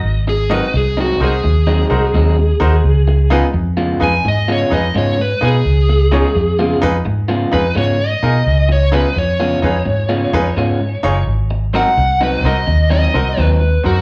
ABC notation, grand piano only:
X:1
M:4/4
L:1/16
Q:"Swing" 1/4=85
K:Db
V:1 name="Grand piano"
z2 [EGBe] z3 [EGBc] z3 [EGBc] z3 [EGBc] z | z2 [EFA_c] z3 [EFAc] z3 [EFAc] z3 [EFAc] z | z2 [EFAd] z3 [EFA_c] z3 [EFAc] z3 [EFAB] z | z2 [EFA_c] z3 [EFAc] z3 [EFAc] z3 [EFAd] z |
z2 [CEGB] z3 [CEGB] z3 [CEGB] z3 [CEGB] z |]